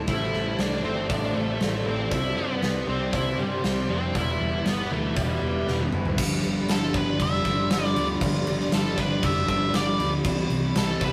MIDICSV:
0, 0, Header, 1, 8, 480
1, 0, Start_track
1, 0, Tempo, 508475
1, 78, Time_signature, 4, 2, 24, 8
1, 10502, End_track
2, 0, Start_track
2, 0, Title_t, "Ambient pad"
2, 0, Program_c, 0, 92
2, 0, Note_on_c, 0, 67, 77
2, 0, Note_on_c, 0, 69, 76
2, 0, Note_on_c, 0, 81, 88
2, 85, Note_on_c, 0, 74, 66
2, 1954, Note_off_c, 0, 67, 0
2, 1957, Note_off_c, 0, 69, 0
2, 1958, Note_off_c, 0, 81, 0
2, 1987, Note_on_c, 0, 84, 87
2, 1988, Note_on_c, 0, 67, 76
2, 3886, Note_off_c, 0, 74, 0
2, 3895, Note_off_c, 0, 84, 0
2, 3908, Note_on_c, 0, 71, 72
2, 3912, Note_on_c, 0, 76, 72
2, 3915, Note_on_c, 0, 83, 89
2, 5796, Note_off_c, 0, 67, 0
2, 5814, Note_off_c, 0, 71, 0
2, 5816, Note_off_c, 0, 76, 0
2, 5817, Note_off_c, 0, 83, 0
2, 5841, Note_on_c, 0, 74, 76
2, 5841, Note_on_c, 0, 83, 98
2, 5843, Note_on_c, 0, 65, 84
2, 5844, Note_on_c, 0, 67, 85
2, 9637, Note_off_c, 0, 74, 0
2, 9638, Note_off_c, 0, 65, 0
2, 9639, Note_off_c, 0, 67, 0
2, 9670, Note_on_c, 0, 67, 86
2, 9670, Note_on_c, 0, 72, 76
2, 9670, Note_on_c, 0, 76, 74
2, 10502, Note_off_c, 0, 67, 0
2, 10502, Note_off_c, 0, 72, 0
2, 10502, Note_off_c, 0, 76, 0
2, 10502, Note_off_c, 0, 83, 0
2, 10502, End_track
3, 0, Start_track
3, 0, Title_t, "Lead electric guitar"
3, 0, Program_c, 1, 29
3, 84, Note_on_c, 1, 64, 89
3, 569, Note_on_c, 1, 62, 86
3, 576, Note_off_c, 1, 64, 0
3, 791, Note_off_c, 1, 62, 0
3, 795, Note_on_c, 1, 60, 78
3, 1027, Note_off_c, 1, 60, 0
3, 1031, Note_on_c, 1, 62, 75
3, 1277, Note_on_c, 1, 57, 88
3, 1282, Note_off_c, 1, 62, 0
3, 1755, Note_on_c, 1, 60, 76
3, 1773, Note_off_c, 1, 57, 0
3, 1992, Note_on_c, 1, 64, 97
3, 2004, Note_off_c, 1, 60, 0
3, 2234, Note_on_c, 1, 59, 80
3, 2243, Note_off_c, 1, 64, 0
3, 2720, Note_off_c, 1, 59, 0
3, 2724, Note_on_c, 1, 60, 77
3, 2962, Note_on_c, 1, 64, 81
3, 2969, Note_off_c, 1, 60, 0
3, 3200, Note_on_c, 1, 55, 80
3, 3208, Note_off_c, 1, 64, 0
3, 3683, Note_on_c, 1, 60, 83
3, 3695, Note_off_c, 1, 55, 0
3, 3927, Note_on_c, 1, 64, 88
3, 3929, Note_off_c, 1, 60, 0
3, 4397, Note_on_c, 1, 59, 89
3, 4418, Note_off_c, 1, 64, 0
3, 4643, Note_on_c, 1, 57, 72
3, 4646, Note_off_c, 1, 59, 0
3, 4873, Note_off_c, 1, 57, 0
3, 4877, Note_on_c, 1, 55, 60
3, 5560, Note_off_c, 1, 55, 0
3, 6332, Note_on_c, 1, 69, 94
3, 6567, Note_on_c, 1, 71, 85
3, 6572, Note_off_c, 1, 69, 0
3, 6809, Note_off_c, 1, 71, 0
3, 6814, Note_on_c, 1, 76, 100
3, 7294, Note_on_c, 1, 74, 91
3, 7298, Note_off_c, 1, 76, 0
3, 7620, Note_off_c, 1, 74, 0
3, 8255, Note_on_c, 1, 69, 96
3, 8490, Note_on_c, 1, 71, 81
3, 8491, Note_off_c, 1, 69, 0
3, 8724, Note_on_c, 1, 76, 99
3, 8729, Note_off_c, 1, 71, 0
3, 8955, Note_off_c, 1, 76, 0
3, 8966, Note_on_c, 1, 76, 105
3, 9207, Note_off_c, 1, 76, 0
3, 9208, Note_on_c, 1, 74, 95
3, 9536, Note_off_c, 1, 74, 0
3, 10173, Note_on_c, 1, 69, 88
3, 10411, Note_off_c, 1, 69, 0
3, 10426, Note_on_c, 1, 71, 89
3, 10502, Note_off_c, 1, 71, 0
3, 10502, End_track
4, 0, Start_track
4, 0, Title_t, "Overdriven electric guitar"
4, 0, Program_c, 2, 29
4, 82, Note_on_c, 2, 60, 90
4, 92, Note_on_c, 2, 64, 92
4, 777, Note_off_c, 2, 64, 0
4, 788, Note_on_c, 2, 64, 91
4, 792, Note_off_c, 2, 60, 0
4, 796, Note_on_c, 2, 60, 75
4, 1980, Note_off_c, 2, 64, 0
4, 1984, Note_off_c, 2, 60, 0
4, 2011, Note_on_c, 2, 62, 96
4, 2702, Note_off_c, 2, 62, 0
4, 2713, Note_on_c, 2, 62, 72
4, 3903, Note_off_c, 2, 62, 0
4, 3914, Note_on_c, 2, 55, 93
4, 3921, Note_on_c, 2, 59, 107
4, 3927, Note_on_c, 2, 64, 103
4, 4623, Note_off_c, 2, 55, 0
4, 4623, Note_off_c, 2, 64, 0
4, 4626, Note_off_c, 2, 59, 0
4, 4634, Note_on_c, 2, 64, 90
4, 4642, Note_on_c, 2, 59, 81
4, 4648, Note_on_c, 2, 55, 70
4, 5821, Note_off_c, 2, 64, 0
4, 5825, Note_off_c, 2, 59, 0
4, 5829, Note_off_c, 2, 55, 0
4, 10502, End_track
5, 0, Start_track
5, 0, Title_t, "Clean electric guitar"
5, 0, Program_c, 3, 27
5, 0, Note_on_c, 3, 60, 63
5, 0, Note_on_c, 3, 64, 69
5, 0, Note_on_c, 3, 67, 64
5, 85, Note_on_c, 3, 55, 65
5, 317, Note_off_c, 3, 55, 0
5, 320, Note_on_c, 3, 55, 67
5, 558, Note_off_c, 3, 60, 0
5, 562, Note_on_c, 3, 60, 67
5, 791, Note_off_c, 3, 67, 0
5, 794, Note_on_c, 3, 67, 63
5, 1023, Note_off_c, 3, 60, 0
5, 1034, Note_on_c, 3, 60, 67
5, 1040, Note_off_c, 3, 64, 0
5, 1268, Note_off_c, 3, 55, 0
5, 1272, Note_on_c, 3, 55, 62
5, 1502, Note_off_c, 3, 60, 0
5, 1514, Note_on_c, 3, 60, 59
5, 1749, Note_on_c, 3, 64, 70
5, 1983, Note_off_c, 3, 55, 0
5, 1987, Note_on_c, 3, 55, 65
5, 1994, Note_off_c, 3, 64, 0
5, 1997, Note_off_c, 3, 60, 0
5, 2224, Note_off_c, 3, 55, 0
5, 2228, Note_on_c, 3, 55, 57
5, 2471, Note_on_c, 3, 60, 80
5, 2699, Note_off_c, 3, 67, 0
5, 2703, Note_on_c, 3, 67, 69
5, 2946, Note_off_c, 3, 60, 0
5, 2957, Note_on_c, 3, 60, 71
5, 3196, Note_off_c, 3, 55, 0
5, 3199, Note_on_c, 3, 55, 64
5, 3424, Note_off_c, 3, 60, 0
5, 3435, Note_on_c, 3, 60, 65
5, 3677, Note_on_c, 3, 62, 69
5, 3913, Note_off_c, 3, 55, 0
5, 3916, Note_on_c, 3, 55, 68
5, 3918, Note_off_c, 3, 60, 0
5, 3919, Note_off_c, 3, 62, 0
5, 4141, Note_off_c, 3, 55, 0
5, 4153, Note_on_c, 3, 55, 63
5, 4396, Note_on_c, 3, 59, 75
5, 4628, Note_off_c, 3, 67, 0
5, 4632, Note_on_c, 3, 67, 62
5, 4864, Note_off_c, 3, 59, 0
5, 4875, Note_on_c, 3, 59, 66
5, 5109, Note_off_c, 3, 55, 0
5, 5120, Note_on_c, 3, 55, 68
5, 5343, Note_off_c, 3, 59, 0
5, 5354, Note_on_c, 3, 59, 62
5, 5595, Note_on_c, 3, 64, 65
5, 5828, Note_off_c, 3, 55, 0
5, 5832, Note_on_c, 3, 53, 70
5, 5835, Note_off_c, 3, 67, 0
5, 5836, Note_off_c, 3, 59, 0
5, 5837, Note_off_c, 3, 64, 0
5, 6076, Note_on_c, 3, 59, 64
5, 6308, Note_off_c, 3, 53, 0
5, 6319, Note_on_c, 3, 53, 81
5, 6561, Note_on_c, 3, 62, 64
5, 6799, Note_on_c, 3, 67, 85
5, 7021, Note_off_c, 3, 62, 0
5, 7032, Note_on_c, 3, 62, 67
5, 7262, Note_off_c, 3, 53, 0
5, 7274, Note_on_c, 3, 53, 66
5, 7302, Note_off_c, 3, 59, 0
5, 7516, Note_on_c, 3, 59, 76
5, 7744, Note_off_c, 3, 53, 0
5, 7755, Note_on_c, 3, 53, 76
5, 7988, Note_off_c, 3, 59, 0
5, 7991, Note_on_c, 3, 59, 70
5, 8219, Note_off_c, 3, 53, 0
5, 8230, Note_on_c, 3, 53, 80
5, 8232, Note_off_c, 3, 62, 0
5, 8258, Note_off_c, 3, 67, 0
5, 8476, Note_on_c, 3, 62, 73
5, 8711, Note_on_c, 3, 67, 89
5, 8940, Note_off_c, 3, 62, 0
5, 8951, Note_on_c, 3, 62, 73
5, 9179, Note_off_c, 3, 53, 0
5, 9190, Note_on_c, 3, 53, 64
5, 9218, Note_off_c, 3, 59, 0
5, 9429, Note_on_c, 3, 59, 78
5, 9663, Note_off_c, 3, 53, 0
5, 9667, Note_on_c, 3, 52, 76
5, 9673, Note_off_c, 3, 62, 0
5, 10141, Note_off_c, 3, 52, 0
5, 10152, Note_on_c, 3, 52, 86
5, 10392, Note_on_c, 3, 64, 69
5, 10502, Note_off_c, 3, 52, 0
5, 10502, Note_off_c, 3, 59, 0
5, 10502, Note_off_c, 3, 64, 0
5, 10502, Note_off_c, 3, 67, 0
5, 10502, End_track
6, 0, Start_track
6, 0, Title_t, "Distorted electric guitar"
6, 0, Program_c, 4, 30
6, 61, Note_on_c, 4, 45, 85
6, 78, Note_on_c, 4, 52, 91
6, 88, Note_on_c, 4, 57, 88
6, 776, Note_off_c, 4, 45, 0
6, 780, Note_off_c, 4, 57, 0
6, 784, Note_off_c, 4, 52, 0
6, 791, Note_on_c, 4, 57, 92
6, 805, Note_on_c, 4, 52, 77
6, 817, Note_on_c, 4, 45, 68
6, 1497, Note_off_c, 4, 45, 0
6, 1501, Note_off_c, 4, 57, 0
6, 1508, Note_off_c, 4, 52, 0
6, 1509, Note_on_c, 4, 45, 65
6, 1521, Note_on_c, 4, 52, 80
6, 1532, Note_on_c, 4, 57, 76
6, 1980, Note_off_c, 4, 45, 0
6, 1986, Note_off_c, 4, 52, 0
6, 1990, Note_on_c, 4, 48, 83
6, 1992, Note_off_c, 4, 57, 0
6, 2002, Note_on_c, 4, 55, 88
6, 2012, Note_on_c, 4, 60, 104
6, 2699, Note_off_c, 4, 60, 0
6, 2701, Note_off_c, 4, 48, 0
6, 2710, Note_on_c, 4, 60, 83
6, 2723, Note_off_c, 4, 55, 0
6, 2727, Note_on_c, 4, 55, 82
6, 2736, Note_on_c, 4, 48, 75
6, 3414, Note_off_c, 4, 48, 0
6, 3421, Note_off_c, 4, 60, 0
6, 3426, Note_on_c, 4, 48, 77
6, 3435, Note_off_c, 4, 55, 0
6, 3438, Note_on_c, 4, 55, 69
6, 3447, Note_on_c, 4, 60, 78
6, 3899, Note_off_c, 4, 48, 0
6, 3910, Note_off_c, 4, 60, 0
6, 3911, Note_on_c, 4, 40, 89
6, 3929, Note_on_c, 4, 47, 85
6, 3933, Note_off_c, 4, 55, 0
6, 3937, Note_on_c, 4, 52, 112
6, 4621, Note_off_c, 4, 40, 0
6, 4624, Note_off_c, 4, 52, 0
6, 4630, Note_off_c, 4, 47, 0
6, 4635, Note_on_c, 4, 52, 89
6, 4646, Note_on_c, 4, 47, 82
6, 4659, Note_on_c, 4, 40, 67
6, 5339, Note_off_c, 4, 40, 0
6, 5343, Note_off_c, 4, 52, 0
6, 5348, Note_off_c, 4, 47, 0
6, 5350, Note_on_c, 4, 40, 74
6, 5366, Note_on_c, 4, 47, 81
6, 5376, Note_on_c, 4, 52, 78
6, 5820, Note_off_c, 4, 40, 0
6, 5828, Note_off_c, 4, 47, 0
6, 5828, Note_on_c, 4, 43, 97
6, 5833, Note_off_c, 4, 52, 0
6, 5838, Note_on_c, 4, 50, 113
6, 5851, Note_on_c, 4, 55, 108
6, 6067, Note_off_c, 4, 55, 0
6, 6071, Note_on_c, 4, 55, 66
6, 6077, Note_off_c, 4, 50, 0
6, 6088, Note_on_c, 4, 50, 59
6, 6310, Note_off_c, 4, 43, 0
6, 6313, Note_on_c, 4, 43, 84
6, 6315, Note_off_c, 4, 50, 0
6, 6327, Note_on_c, 4, 50, 82
6, 6332, Note_off_c, 4, 55, 0
6, 6336, Note_on_c, 4, 55, 83
6, 6779, Note_off_c, 4, 43, 0
6, 6791, Note_on_c, 4, 43, 97
6, 6793, Note_off_c, 4, 50, 0
6, 6805, Note_on_c, 4, 50, 98
6, 6810, Note_off_c, 4, 55, 0
6, 6814, Note_on_c, 4, 55, 101
6, 7031, Note_off_c, 4, 55, 0
6, 7035, Note_on_c, 4, 55, 72
6, 7041, Note_off_c, 4, 50, 0
6, 7053, Note_on_c, 4, 50, 56
6, 7267, Note_off_c, 4, 43, 0
6, 7277, Note_off_c, 4, 50, 0
6, 7278, Note_on_c, 4, 43, 80
6, 7288, Note_on_c, 4, 50, 76
6, 7295, Note_off_c, 4, 55, 0
6, 7299, Note_on_c, 4, 55, 85
6, 7516, Note_off_c, 4, 55, 0
6, 7520, Note_on_c, 4, 55, 73
6, 7527, Note_off_c, 4, 50, 0
6, 7539, Note_on_c, 4, 50, 56
6, 7745, Note_off_c, 4, 43, 0
6, 7757, Note_on_c, 4, 43, 96
6, 7759, Note_off_c, 4, 50, 0
6, 7771, Note_on_c, 4, 50, 97
6, 7775, Note_off_c, 4, 55, 0
6, 7779, Note_on_c, 4, 55, 112
6, 7994, Note_off_c, 4, 55, 0
6, 7997, Note_on_c, 4, 55, 75
6, 8011, Note_off_c, 4, 50, 0
6, 8022, Note_on_c, 4, 50, 53
6, 8230, Note_off_c, 4, 43, 0
6, 8241, Note_on_c, 4, 43, 76
6, 8245, Note_off_c, 4, 50, 0
6, 8256, Note_off_c, 4, 55, 0
6, 8256, Note_on_c, 4, 50, 80
6, 8260, Note_on_c, 4, 55, 88
6, 8701, Note_off_c, 4, 43, 0
6, 8712, Note_on_c, 4, 43, 92
6, 8714, Note_off_c, 4, 50, 0
6, 8725, Note_on_c, 4, 50, 104
6, 8731, Note_off_c, 4, 55, 0
6, 8734, Note_on_c, 4, 55, 114
6, 8951, Note_off_c, 4, 55, 0
6, 8955, Note_on_c, 4, 55, 81
6, 8967, Note_off_c, 4, 50, 0
6, 8978, Note_on_c, 4, 50, 56
6, 9189, Note_off_c, 4, 43, 0
6, 9195, Note_off_c, 4, 50, 0
6, 9200, Note_on_c, 4, 43, 80
6, 9206, Note_on_c, 4, 50, 88
6, 9214, Note_off_c, 4, 55, 0
6, 9218, Note_on_c, 4, 55, 85
6, 9432, Note_off_c, 4, 55, 0
6, 9436, Note_on_c, 4, 55, 72
6, 9443, Note_off_c, 4, 50, 0
6, 9455, Note_on_c, 4, 50, 66
6, 9663, Note_off_c, 4, 43, 0
6, 9670, Note_off_c, 4, 50, 0
6, 9680, Note_on_c, 4, 48, 115
6, 9685, Note_off_c, 4, 55, 0
6, 9688, Note_on_c, 4, 55, 106
6, 9699, Note_on_c, 4, 60, 98
6, 9907, Note_off_c, 4, 60, 0
6, 9911, Note_on_c, 4, 60, 83
6, 9931, Note_off_c, 4, 55, 0
6, 9935, Note_on_c, 4, 55, 59
6, 10155, Note_off_c, 4, 48, 0
6, 10158, Note_on_c, 4, 48, 80
6, 10166, Note_off_c, 4, 55, 0
6, 10170, Note_on_c, 4, 55, 81
6, 10178, Note_off_c, 4, 60, 0
6, 10182, Note_on_c, 4, 60, 102
6, 10502, Note_off_c, 4, 48, 0
6, 10502, Note_off_c, 4, 55, 0
6, 10502, Note_off_c, 4, 60, 0
6, 10502, End_track
7, 0, Start_track
7, 0, Title_t, "Fingered electric bass"
7, 0, Program_c, 5, 33
7, 73, Note_on_c, 5, 33, 92
7, 283, Note_off_c, 5, 33, 0
7, 313, Note_on_c, 5, 33, 68
7, 523, Note_off_c, 5, 33, 0
7, 549, Note_on_c, 5, 36, 89
7, 761, Note_off_c, 5, 36, 0
7, 793, Note_on_c, 5, 31, 84
7, 1003, Note_off_c, 5, 31, 0
7, 1034, Note_on_c, 5, 33, 83
7, 1244, Note_off_c, 5, 33, 0
7, 1268, Note_on_c, 5, 33, 93
7, 1480, Note_off_c, 5, 33, 0
7, 1515, Note_on_c, 5, 33, 94
7, 1724, Note_off_c, 5, 33, 0
7, 1756, Note_on_c, 5, 33, 72
7, 1965, Note_off_c, 5, 33, 0
7, 1992, Note_on_c, 5, 36, 92
7, 2203, Note_off_c, 5, 36, 0
7, 2235, Note_on_c, 5, 43, 67
7, 2444, Note_off_c, 5, 43, 0
7, 2482, Note_on_c, 5, 36, 78
7, 2688, Note_off_c, 5, 36, 0
7, 2717, Note_on_c, 5, 36, 90
7, 2925, Note_off_c, 5, 36, 0
7, 2951, Note_on_c, 5, 36, 88
7, 3162, Note_off_c, 5, 36, 0
7, 3192, Note_on_c, 5, 43, 87
7, 3403, Note_off_c, 5, 43, 0
7, 3434, Note_on_c, 5, 36, 92
7, 3644, Note_off_c, 5, 36, 0
7, 3674, Note_on_c, 5, 41, 78
7, 3884, Note_off_c, 5, 41, 0
7, 3918, Note_on_c, 5, 28, 93
7, 4126, Note_off_c, 5, 28, 0
7, 4156, Note_on_c, 5, 28, 76
7, 4365, Note_off_c, 5, 28, 0
7, 4394, Note_on_c, 5, 31, 82
7, 4604, Note_off_c, 5, 31, 0
7, 4637, Note_on_c, 5, 38, 83
7, 4846, Note_off_c, 5, 38, 0
7, 4874, Note_on_c, 5, 28, 88
7, 5084, Note_off_c, 5, 28, 0
7, 5112, Note_on_c, 5, 28, 88
7, 5322, Note_off_c, 5, 28, 0
7, 5354, Note_on_c, 5, 28, 89
7, 5563, Note_off_c, 5, 28, 0
7, 5592, Note_on_c, 5, 30, 81
7, 5802, Note_off_c, 5, 30, 0
7, 5833, Note_on_c, 5, 31, 95
7, 6021, Note_off_c, 5, 31, 0
7, 6076, Note_on_c, 5, 31, 73
7, 6263, Note_off_c, 5, 31, 0
7, 6315, Note_on_c, 5, 31, 88
7, 6502, Note_off_c, 5, 31, 0
7, 6555, Note_on_c, 5, 31, 93
7, 6742, Note_off_c, 5, 31, 0
7, 6792, Note_on_c, 5, 29, 96
7, 6980, Note_off_c, 5, 29, 0
7, 7031, Note_on_c, 5, 31, 90
7, 7219, Note_off_c, 5, 31, 0
7, 7268, Note_on_c, 5, 31, 96
7, 7457, Note_off_c, 5, 31, 0
7, 7514, Note_on_c, 5, 38, 75
7, 7701, Note_off_c, 5, 38, 0
7, 7751, Note_on_c, 5, 31, 105
7, 7938, Note_off_c, 5, 31, 0
7, 7994, Note_on_c, 5, 31, 85
7, 8180, Note_off_c, 5, 31, 0
7, 8229, Note_on_c, 5, 31, 90
7, 8417, Note_off_c, 5, 31, 0
7, 8473, Note_on_c, 5, 31, 105
7, 8659, Note_off_c, 5, 31, 0
7, 8713, Note_on_c, 5, 29, 105
7, 8900, Note_off_c, 5, 29, 0
7, 8953, Note_on_c, 5, 31, 97
7, 9140, Note_off_c, 5, 31, 0
7, 9185, Note_on_c, 5, 31, 101
7, 9375, Note_off_c, 5, 31, 0
7, 9430, Note_on_c, 5, 38, 73
7, 9617, Note_off_c, 5, 38, 0
7, 9674, Note_on_c, 5, 36, 100
7, 9861, Note_off_c, 5, 36, 0
7, 9912, Note_on_c, 5, 36, 90
7, 10099, Note_off_c, 5, 36, 0
7, 10153, Note_on_c, 5, 36, 98
7, 10340, Note_off_c, 5, 36, 0
7, 10392, Note_on_c, 5, 36, 88
7, 10502, Note_off_c, 5, 36, 0
7, 10502, End_track
8, 0, Start_track
8, 0, Title_t, "Drums"
8, 71, Note_on_c, 9, 46, 52
8, 74, Note_on_c, 9, 36, 93
8, 165, Note_off_c, 9, 46, 0
8, 169, Note_off_c, 9, 36, 0
8, 316, Note_on_c, 9, 38, 31
8, 410, Note_off_c, 9, 38, 0
8, 553, Note_on_c, 9, 46, 42
8, 556, Note_on_c, 9, 38, 87
8, 648, Note_off_c, 9, 46, 0
8, 651, Note_off_c, 9, 38, 0
8, 1036, Note_on_c, 9, 36, 111
8, 1036, Note_on_c, 9, 46, 47
8, 1130, Note_off_c, 9, 46, 0
8, 1131, Note_off_c, 9, 36, 0
8, 1516, Note_on_c, 9, 46, 45
8, 1519, Note_on_c, 9, 38, 91
8, 1611, Note_off_c, 9, 46, 0
8, 1614, Note_off_c, 9, 38, 0
8, 1996, Note_on_c, 9, 36, 110
8, 1999, Note_on_c, 9, 46, 50
8, 2091, Note_off_c, 9, 36, 0
8, 2093, Note_off_c, 9, 46, 0
8, 2477, Note_on_c, 9, 46, 44
8, 2480, Note_on_c, 9, 38, 88
8, 2571, Note_off_c, 9, 46, 0
8, 2574, Note_off_c, 9, 38, 0
8, 2955, Note_on_c, 9, 36, 106
8, 2956, Note_on_c, 9, 46, 53
8, 3050, Note_off_c, 9, 36, 0
8, 3051, Note_off_c, 9, 46, 0
8, 3436, Note_on_c, 9, 46, 45
8, 3439, Note_on_c, 9, 38, 93
8, 3530, Note_off_c, 9, 46, 0
8, 3533, Note_off_c, 9, 38, 0
8, 3918, Note_on_c, 9, 36, 94
8, 3920, Note_on_c, 9, 46, 47
8, 4013, Note_off_c, 9, 36, 0
8, 4014, Note_off_c, 9, 46, 0
8, 4396, Note_on_c, 9, 46, 46
8, 4399, Note_on_c, 9, 38, 94
8, 4491, Note_off_c, 9, 46, 0
8, 4494, Note_off_c, 9, 38, 0
8, 4874, Note_on_c, 9, 46, 50
8, 4876, Note_on_c, 9, 36, 111
8, 4969, Note_off_c, 9, 46, 0
8, 4970, Note_off_c, 9, 36, 0
8, 5359, Note_on_c, 9, 38, 56
8, 5453, Note_off_c, 9, 38, 0
8, 5473, Note_on_c, 9, 48, 64
8, 5567, Note_off_c, 9, 48, 0
8, 5593, Note_on_c, 9, 45, 84
8, 5687, Note_off_c, 9, 45, 0
8, 5715, Note_on_c, 9, 43, 74
8, 5809, Note_off_c, 9, 43, 0
8, 5835, Note_on_c, 9, 36, 114
8, 5836, Note_on_c, 9, 49, 127
8, 5836, Note_on_c, 9, 57, 86
8, 5930, Note_off_c, 9, 36, 0
8, 5930, Note_off_c, 9, 49, 0
8, 5930, Note_off_c, 9, 57, 0
8, 6074, Note_on_c, 9, 57, 61
8, 6168, Note_off_c, 9, 57, 0
8, 6312, Note_on_c, 9, 54, 104
8, 6317, Note_on_c, 9, 57, 72
8, 6320, Note_on_c, 9, 38, 107
8, 6406, Note_off_c, 9, 54, 0
8, 6412, Note_off_c, 9, 57, 0
8, 6415, Note_off_c, 9, 38, 0
8, 6551, Note_on_c, 9, 57, 66
8, 6554, Note_on_c, 9, 36, 94
8, 6645, Note_off_c, 9, 57, 0
8, 6648, Note_off_c, 9, 36, 0
8, 6794, Note_on_c, 9, 36, 82
8, 6794, Note_on_c, 9, 57, 86
8, 6888, Note_off_c, 9, 36, 0
8, 6888, Note_off_c, 9, 57, 0
8, 7031, Note_on_c, 9, 57, 56
8, 7034, Note_on_c, 9, 36, 78
8, 7126, Note_off_c, 9, 57, 0
8, 7128, Note_off_c, 9, 36, 0
8, 7274, Note_on_c, 9, 54, 96
8, 7274, Note_on_c, 9, 57, 84
8, 7277, Note_on_c, 9, 38, 105
8, 7368, Note_off_c, 9, 57, 0
8, 7369, Note_off_c, 9, 54, 0
8, 7371, Note_off_c, 9, 38, 0
8, 7400, Note_on_c, 9, 38, 35
8, 7495, Note_off_c, 9, 38, 0
8, 7517, Note_on_c, 9, 57, 65
8, 7611, Note_off_c, 9, 57, 0
8, 7751, Note_on_c, 9, 57, 93
8, 7753, Note_on_c, 9, 36, 118
8, 7846, Note_off_c, 9, 57, 0
8, 7847, Note_off_c, 9, 36, 0
8, 7994, Note_on_c, 9, 57, 64
8, 8089, Note_off_c, 9, 57, 0
8, 8116, Note_on_c, 9, 38, 36
8, 8211, Note_off_c, 9, 38, 0
8, 8232, Note_on_c, 9, 57, 79
8, 8235, Note_on_c, 9, 38, 93
8, 8236, Note_on_c, 9, 54, 100
8, 8327, Note_off_c, 9, 57, 0
8, 8330, Note_off_c, 9, 38, 0
8, 8331, Note_off_c, 9, 54, 0
8, 8475, Note_on_c, 9, 36, 81
8, 8479, Note_on_c, 9, 57, 64
8, 8569, Note_off_c, 9, 36, 0
8, 8573, Note_off_c, 9, 57, 0
8, 8713, Note_on_c, 9, 36, 95
8, 8714, Note_on_c, 9, 57, 86
8, 8808, Note_off_c, 9, 36, 0
8, 8809, Note_off_c, 9, 57, 0
8, 8953, Note_on_c, 9, 36, 79
8, 8954, Note_on_c, 9, 57, 60
8, 9048, Note_off_c, 9, 36, 0
8, 9049, Note_off_c, 9, 57, 0
8, 9193, Note_on_c, 9, 57, 80
8, 9196, Note_on_c, 9, 38, 105
8, 9203, Note_on_c, 9, 54, 75
8, 9287, Note_off_c, 9, 57, 0
8, 9290, Note_off_c, 9, 38, 0
8, 9297, Note_off_c, 9, 54, 0
8, 9438, Note_on_c, 9, 57, 61
8, 9532, Note_off_c, 9, 57, 0
8, 9673, Note_on_c, 9, 36, 115
8, 9673, Note_on_c, 9, 57, 90
8, 9768, Note_off_c, 9, 36, 0
8, 9768, Note_off_c, 9, 57, 0
8, 9913, Note_on_c, 9, 57, 62
8, 10008, Note_off_c, 9, 57, 0
8, 10153, Note_on_c, 9, 57, 79
8, 10156, Note_on_c, 9, 38, 108
8, 10164, Note_on_c, 9, 54, 101
8, 10247, Note_off_c, 9, 57, 0
8, 10250, Note_off_c, 9, 38, 0
8, 10259, Note_off_c, 9, 54, 0
8, 10392, Note_on_c, 9, 57, 62
8, 10394, Note_on_c, 9, 36, 87
8, 10487, Note_off_c, 9, 57, 0
8, 10489, Note_off_c, 9, 36, 0
8, 10502, End_track
0, 0, End_of_file